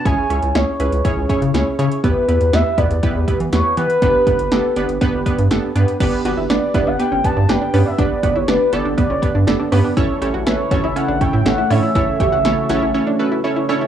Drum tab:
CC |----------------|----------------|----------------|x---------------|
HH |x-xxx-xxx-xxx-xx|x-xxx-xxx-xxx-xx|x-xxx-xxx-xxx-xx|x-x-x-x-x-x-x-o-|
SD |----o-------o---|----o-------o---|----o-------o---|----o-------o---|
BD |o-------o-o-----|o-----o-o-o-----|o-o-----o-o-----|o-----o---o-----|

CC |----------------|----------------|----------------|
HH |x-x-x-x-x-x-x-o-|x-x-x-x-x-x-x-o-|x-x-x-x---------|
SD |----o-------o---|----o-------o---|----o-----------|
BD |o-o-----o-o-----|o-----o---o-----|o-o-------------|